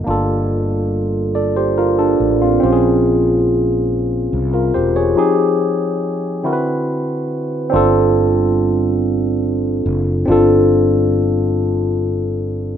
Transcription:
<<
  \new Staff \with { instrumentName = "Tine electric piano" } { \time 6/8 \key bes \mixolydian \tempo 4. = 47 << { r4. <a' d''>16 <g' c''>16 <f' bes'>16 <d' a'>8 <c' f'>16~ | <c' f'>16 r2 <f' bes'>16 <g' c''>16 <aes' des''>16~ | <aes' des''>16 r2 r8. | \key c \dorian r2. |
r2. | } \\ { <bes d' f' a'>2. | <c' des' f' g' aes'>2. | <f c' ees' g' aes'>4. <d c' e' fis' bes' b'>4. | <c' d' f' a'>2. |
<c' d' f' a'>2. | } >> }
  \new Staff \with { instrumentName = "Fretless electric bass" } { \clef bass \time 6/8 \key bes \mixolydian g,,2~ g,,8 a,,8 | bes,,2 c,8 e,,8 | r2. | \key c \dorian g,,2~ g,,8 fis,,8 |
g,,2. | }
>>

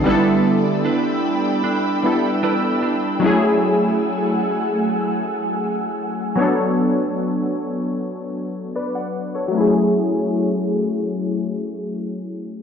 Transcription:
<<
  \new Staff \with { instrumentName = "Ambient pad" } { \time 4/4 \key fis \phrygian \tempo 4 = 76 << { e'''1~ | e'''1 | r1 | r1 | } \\ { <d'' g'' b''>1 | <a fis'' gis''>1 | r1 | r1 | } >> }
  \new Staff \with { instrumentName = "Clean electric guitar" } { \time 4/4 \key fis \phrygian <g b'>4 <d' e' b'>4 d'4 <d' e' b'>8 d'8 | r1 | r1 | r1 | }
  \new Staff \with { instrumentName = "Synth keys" } { \time 4/4 \key fis \phrygian << { r1 | r1 | r2. <b' d''>16 <d'' fis''>8 <a' cis''>16~ | <a' cis''>16 r2. r8. | } \\ { <g b d' e' a'>2~ <g b d' e' a'>8 <g b d' e' a'>4. | <fis gis a cis' e' gis'>1 | <fis b d' a' cis''>1 | <fis a cis' e' gis'>1 | } >> }
>>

